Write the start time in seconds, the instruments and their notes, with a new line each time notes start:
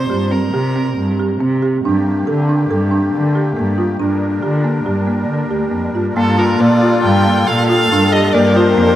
Already playing: violin C5
0.10 cello G2, marimba G4
0.31 marimba C4, violin A#4
0.53 cello C3, marimba G4
0.76 marimba C4
0.97 cello G2
1.19 marimba G4
1.40 cello C3, marimba C4
1.62 marimba G4
1.84 cello G2, accordion A3 A#3 G4, marimba D4
2.27 cello D3, marimba A4
2.49 marimba D4
2.70 cello G2, marimba A4
2.91 marimba D4
3.13 cello D3
3.35 marimba G4
3.56 cello G2, marimba A#3
3.78 marimba F4
3.98 cello G2, accordion G3 D4 A#4, marimba D4
4.43 cello D3, marimba G4
4.64 marimba A#3
4.84 cello G2, marimba G4
5.07 marimba A#3
5.28 cello D3
5.50 cello D2, marimba G4
5.71 cello F2, marimba A#3
5.94 cello G2, marimba F4
6.14 cello G2, accordion G3 A#3 D4 F4 A4, marimba A#3, viola F4, violin A4
6.38 marimba F4, violin A#4
6.59 cello A#2, marimba A#3, violin D5
6.83 marimba F4
7.03 cello G2, violin G5
7.26 marimba A#3
7.47 cello A#2, viola A4, violin F5
7.68 marimba F4, violin F5
7.91 cello G2, marimba D4
8.12 marimba G4, violin D#5
8.33 cello G2, marimba A#3, accordion A#3 G4, viola A#4, violin D5
8.56 marimba F4, violin C5
8.78 cello F2, marimba A#3